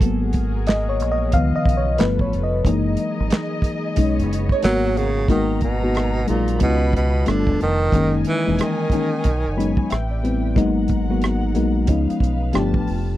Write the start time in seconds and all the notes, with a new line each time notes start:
Already playing: A4
0.01 G#1 F#3 G#3 A#3 B3 F#4 G#4 A#4, kick, closed hi-hat
0.33 kick, closed hi-hat
0.67 D#5, snare, clap, closed hi-hat
0.89 C#5
1.00 A#1, closed hi-hat
1.12 D#5
1.32 C#2 C#3 D#3 F3 B3 F4 D#5 F5, kick, closed hi-hat
1.56 D#5
1.65 B1, kick, closed hi-hat
1.77 C#5
1.98 G1 F3 G3 A3 B3 A4 B4, snare, clap, closed hi-hat
2.19 A1 C#5, kick
2.33 F1, closed hi-hat
2.43 D#5
2.65 F#1 E3 F#3 G#3 A#3 D#4 G#4 A#4 D#5, kick, closed hi-hat
2.97 closed hi-hat
3.20 G#1
3.30 snare, clap, closed hi-hat
3.62 kick, closed hi-hat
3.96 B1 G#3 B3 C#4 D#4 C#5, kick, closed hi-hat
4.19 F#1, closed hi-hat
4.33 closed hi-hat
4.49 C#5, kick
4.62 G#1 F#3 G#3 A#3 B3 F#4 G#4 A#4, snare, clap, closed hi-hat
4.86 F#4
4.97 C#3, closed hi-hat
5.28 G#1 D#3 G#3 A#3 B3 D#4 F#4 A#4 A#5, kick, closed hi-hat
5.61 B2, kick, closed hi-hat
5.82 G#3 A#3 B3 D#4 F#4
5.95 cross-stick, closed hi-hat
6.27 A#1 A#2 F#3 G#3 A#3 D#4 G#4, closed hi-hat
6.48 closed hi-hat
6.60 C#2 B2 G#3 B3 C#4 D#4 E4 F4 D#5 B5, kick, closed hi-hat
6.69 F4
6.93 B2, kick, closed hi-hat
7.26 G1 D3 G3 A3 B3 D4 F4 B4 A5, cross-stick, closed hi-hat
7.47 E1, kick
7.61 F1 D#3, closed hi-hat
7.92 F#1 D#3 G#3 A#3 C#4 D#4 A#4 D#5 G#5, kick, closed hi-hat
8.25 E3, closed hi-hat
8.46 E1 E3 G#3 A#3 C#4 D#4
8.59 D#3, cross-stick, closed hi-hat
8.90 D#3 G#3 A#3 C#4 D#4, kick, closed hi-hat
9.24 B1 D#4 C#5, kick, closed hi-hat
9.47 F#1
9.57 F#3 G#3 B3 C#4 D#4 B5, closed hi-hat
9.77 G#5, kick
9.90 A1 C3 B4 E5 G5, cross-stick, closed hi-hat
10.11 D5
10.23 G3 A3 B3 C4 E4, closed hi-hat
10.55 G#1 F#3 G#3 A#3 B3 D#4 A#4 F#5, kick, closed hi-hat
10.88 kick, closed hi-hat
11.09 F#3 G#3 A#3 B3 F#4
11.22 cross-stick, closed hi-hat
11.54 A#1 F#3 G#3 A#3 B3 D#4, closed hi-hat
11.87 C#2 F3 G#3 B3 C#4 D#4 B4 F5, kick, closed hi-hat
12.10 closed hi-hat
12.20 B1, kick, closed hi-hat
12.53 G1 F3 A3 B3 D4 F4 G4 A5, cross-stick, closed hi-hat
12.74 A1, kick
12.88 F1, open hi-hat